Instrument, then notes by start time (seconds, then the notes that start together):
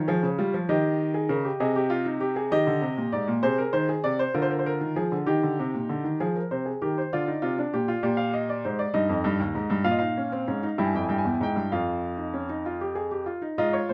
grand piano
Already playing: C#5
0.08 F3 G#4
0.23 C#3
0.38 G3 F4
0.54 F3
0.69 D#3 G4 D#5
1.14 G#4
1.29 C#3 A#4
1.44 G4
1.60 C3 G#4 D#5
1.76 G4
1.90 F4
2.06 D#4
2.20 G4
2.36 G#4
2.51 D#3 G4 D#5
2.67 D3
2.82 C3
2.97 A#2
3.12 G#2 D5
3.27 A#2
3.43 C3 G#4 C5
3.58 A#4
3.73 D#3 C5
3.89 G#4
4.04 C3 D5
4.19 C5
4.34 D3 F4 A#4
4.42 C5
4.51 A#4
4.59 C5
4.66 A#4
4.81 D#3
4.96 F3 G#4
5.12 D3
5.26 D#3 D#4 G4
5.43 D3
5.59 C3
5.74 A#2
5.89 D3
6.04 D#3
6.20 F3 G#4
6.36 A#4
6.51 C3 C5
6.66 G#4
6.82 D#3 G4 A#4
6.98 C5
7.13 D3 F4 D5
7.27 D#4
7.42 C3 F4
7.58 D4
7.73 A#2 G4
7.88 F4
8.03 A#2 G4 D5
8.17 F5
8.34 D#5
8.49 D5
8.65 G#2 C5
8.79 D5
8.94 G2 D#4 D#5
9.09 F2
9.24 G2
9.40 D#2
9.55 G#2
9.70 G2
9.84 A#2 F4 F5
9.91 D#5
9.99 D#4 F5
10.17 C#4
10.32 C4
10.48 G#2 C#4
10.63 D#4
10.78 G2 E4 G5
10.85 G#5
10.94 F2 G5
11.03 G#5
11.09 G2 G5
11.18 G#5
11.25 E2 G5
11.34 G#5
11.40 G#2 G5
11.56 G2
11.72 F2 F4 F5
12.17 D#4
12.34 C#4
12.49 D#4
12.66 F4
12.81 G4
12.95 G#4
13.11 G4
13.26 F4
13.42 D#4
13.58 G#2 F4 D#5
13.73 C#5
13.89 A#2 C5